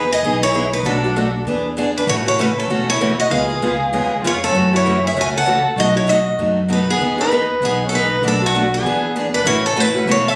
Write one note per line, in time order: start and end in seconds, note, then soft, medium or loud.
0.00 0.11 B4 medium
0.12 0.40 G#4 medium
0.12 0.43 D#5 medium
0.23 0.72 B1 medium
0.23 0.43 E3 medium
0.23 0.43 B3 medium
0.23 0.43 D#4 medium
0.23 0.43 G#4 medium
0.43 0.71 E4 medium
0.43 0.73 C#5 medium
0.54 0.64 E3 medium
0.54 0.64 B3 medium
0.54 0.65 D#4 medium
0.54 0.65 G#4 medium
0.73 0.85 D#4 medium
0.73 0.85 B4 medium
0.83 1.33 B1 medium
0.83 1.02 B2 medium
0.83 1.02 F#3 medium
0.83 1.02 A3 medium
0.83 1.02 D4 medium
0.83 1.43 D4 medium
0.83 1.03 F#4 medium
0.83 1.43 A4 medium
1.04 1.15 A3 soft
1.04 1.16 D4 soft
1.04 1.15 F#4 medium
1.16 1.26 B2 medium
1.16 1.26 F#3 medium
1.16 1.26 A3 medium
1.16 1.27 D4 medium
1.16 1.27 F#4 medium
1.45 1.95 E2 medium
1.45 1.66 E3 medium
1.45 1.66 B3 medium
1.45 1.66 D4 medium
1.45 1.67 G#4 medium
1.77 1.87 E3 medium
1.77 1.88 B3 medium
1.77 1.88 D4 medium
1.77 1.88 G#4 medium
1.96 2.02 D4 medium
1.96 2.03 B4 medium
2.07 2.56 A1 loud
2.07 2.25 C#3 medium
2.07 2.25 E3 medium
2.07 2.25 A3 medium
2.07 2.26 C#4 medium
2.07 2.25 F#4 medium
2.07 2.14 C#5 medium
2.11 2.18 E4 medium
2.25 2.38 A3 soft
2.25 2.38 C#4 soft
2.25 2.37 E4 medium
2.25 2.38 F#4 medium
2.25 2.40 C#5 medium
2.39 2.49 C#3 medium
2.39 2.49 E3 medium
2.39 2.50 A3 medium
2.39 2.50 C#4 medium
2.39 2.56 E4 medium
2.39 2.50 F#4 medium
2.39 2.58 B4 medium
2.57 2.85 C#4 medium
2.57 2.87 A4 medium
2.68 3.18 E1 medium
2.68 2.89 C#3 medium
2.68 2.89 E3 medium
2.68 2.89 A3 medium
2.68 2.89 C#4 medium
2.68 2.90 F#4 medium
2.89 3.17 E4 medium
2.89 3.19 C#5 medium
3.01 3.11 C#3 medium
3.01 3.11 E3 medium
3.01 3.11 A3 medium
3.01 3.11 C#4 medium
3.01 3.12 F#4 medium
3.19 3.31 F#4 medium
3.19 3.31 D#5 medium
3.30 3.55 C#2 medium
3.30 3.48 C#3 medium
3.30 3.48 G#3 medium
3.30 3.49 B3 medium
3.30 3.49 F4 medium
3.30 4.20 G#4 medium
3.30 3.47 G#4 medium
3.30 4.26 F5 medium
3.48 3.62 B3 soft
3.48 3.61 F4 medium
3.48 3.61 G#4 medium
3.61 3.87 C#2 medium
3.61 3.73 C#3 medium
3.61 3.73 G#3 medium
3.61 3.73 B3 medium
3.61 3.73 F4 medium
3.61 3.73 G#4 medium
3.92 4.18 D#2 medium
3.92 4.12 C#3 medium
3.92 4.13 G#3 medium
3.92 4.13 B3 medium
3.92 4.13 F4 medium
3.92 4.13 G#4 medium
4.22 4.49 F2 medium
4.22 4.35 C#3 medium
4.22 4.35 G#3 medium
4.22 4.35 B3 medium
4.22 4.41 F4 medium
4.22 4.35 F4 medium
4.22 4.35 G#4 medium
4.27 4.42 C#5 medium
4.44 4.72 C#4 medium
4.44 4.71 A4 medium
4.52 5.02 F#2 medium
4.52 4.72 C#3 medium
4.52 4.72 E3 medium
4.52 4.72 A3 medium
4.52 4.72 C#4 medium
4.52 4.72 F#4 medium
4.73 4.85 A3 soft
4.73 4.85 C#4 soft
4.73 5.02 E4 medium
4.73 4.85 F#4 medium
4.73 5.06 C#5 medium
4.86 4.96 C#3 medium
4.86 4.96 E3 medium
4.86 4.96 A3 medium
4.86 4.97 C#4 medium
4.86 4.97 F#4 medium
5.04 5.13 G#4 medium
5.04 5.17 E5 medium
5.14 5.64 C#2 medium
5.14 5.36 C#3 medium
5.14 5.36 E3 medium
5.14 5.36 A3 medium
5.14 5.36 C#4 medium
5.14 5.22 C#5 medium
5.18 5.36 F#4 medium
5.18 5.26 G#5 medium
5.33 5.62 A4 medium
5.38 5.65 F#5 medium
5.46 5.57 C#3 medium
5.46 5.57 E3 medium
5.46 5.57 A3 medium
5.46 5.57 C#4 medium
5.46 5.58 F#4 medium
5.76 6.26 B1 medium
5.76 5.95 B2 medium
5.76 5.95 F#3 medium
5.76 5.95 A3 medium
5.76 5.95 D#4 medium
5.76 5.93 F#4 medium
5.76 5.94 F#4 medium
5.76 5.96 D#5 loud
5.94 6.07 A3 soft
5.94 6.07 D#4 soft
5.94 6.11 E4 medium
5.94 6.07 F#4 medium
5.94 6.09 C#5 medium
6.07 6.18 B2 medium
6.07 6.18 F#3 medium
6.07 6.19 A3 medium
6.07 6.19 D#4 medium
6.07 6.19 F#4 medium
6.07 6.39 F#4 medium
6.07 6.39 D#5 medium
6.38 6.87 F#2 medium
6.38 6.58 B2 medium
6.38 6.58 F#3 medium
6.38 6.58 A3 medium
6.38 6.59 D#4 medium
6.38 6.59 F#4 medium
6.68 6.80 B2 medium
6.68 6.80 F#3 medium
6.68 6.80 A3 medium
6.68 6.80 D#4 medium
6.68 6.87 D#4 medium
6.68 6.81 F#4 loud
6.73 6.88 B4 medium
6.88 7.17 B3 medium
6.88 7.21 G#4 medium
6.99 7.49 E2 medium
6.99 7.18 E3 medium
6.99 7.18 B3 medium
6.99 7.18 D#4 medium
6.99 7.17 G#4 medium
7.18 7.30 B3 soft
7.18 7.59 D#4 medium
7.18 7.31 D#4 medium
7.18 7.30 G#4 medium
7.18 7.64 B4 medium
7.31 7.42 E3 medium
7.31 7.42 B3 medium
7.31 7.42 D#4 medium
7.31 7.42 G#4 medium
7.60 8.10 B1 medium
7.60 7.81 E3 medium
7.60 7.82 B3 medium
7.60 7.85 B3 medium
7.60 7.82 D#4 medium
7.60 7.82 G#4 medium
7.65 7.89 G#4 medium
7.85 7.91 C#4 soft
7.85 7.93 A4 medium
7.91 8.02 E3 medium
7.91 8.03 B3 medium
7.91 8.03 D#4 medium
7.91 8.22 D#4 medium
7.91 8.03 G#4 medium
7.91 8.22 B4 medium
8.22 8.71 B1 medium
8.22 8.40 B2 medium
8.22 8.41 F#3 medium
8.22 8.41 A3 medium
8.22 8.40 D4 medium
8.22 8.41 D4 medium
8.22 8.40 F#4 medium
8.28 8.44 A4 medium
8.41 8.70 A3 medium
8.41 8.54 A3 soft
8.41 8.54 D4 soft
8.41 8.53 F#4 medium
8.46 8.75 F#4 medium
8.54 8.65 B2 medium
8.54 8.65 F#3 medium
8.54 8.65 A3 medium
8.54 8.65 D4 medium
8.54 8.65 F#4 medium
8.73 9.12 B3 medium
8.73 9.13 G#4 medium
8.83 9.32 E2 medium
8.83 9.04 E3 medium
8.83 9.05 B3 medium
8.83 9.04 D4 medium
8.83 9.05 G#4 medium
9.16 9.26 E3 medium
9.16 9.26 B3 medium
9.16 9.26 D4 medium
9.16 9.26 G#4 medium
9.33 9.44 D4 medium
9.33 9.45 B4 medium
9.44 9.94 A1 medium
9.44 9.65 C#3 medium
9.44 9.65 E3 medium
9.44 9.65 A3 medium
9.44 9.65 C#4 medium
9.44 9.62 E4 medium
9.44 9.65 F#4 medium
9.44 9.65 C#5 medium
9.64 9.78 C#4 medium
9.64 9.80 A4 medium
9.76 9.87 C#3 medium
9.76 9.87 E3 medium
9.76 9.87 A3 medium
9.76 9.87 C#4 medium
9.76 10.06 E4 medium
9.76 9.87 F#4 medium
9.76 10.09 B4 medium
9.94 10.07 A3 medium
9.94 10.07 C#4 medium
9.94 10.06 F#4 medium
10.05 10.36 E1 medium
10.05 10.26 C#3 medium
10.05 10.26 E3 medium
10.05 10.27 A3 medium
10.05 10.27 C#4 medium
10.05 10.28 E4 medium
10.05 10.27 F#4 medium
10.11 10.28 C#5 medium
10.27 10.36 A4 medium
10.27 10.36 E5 loud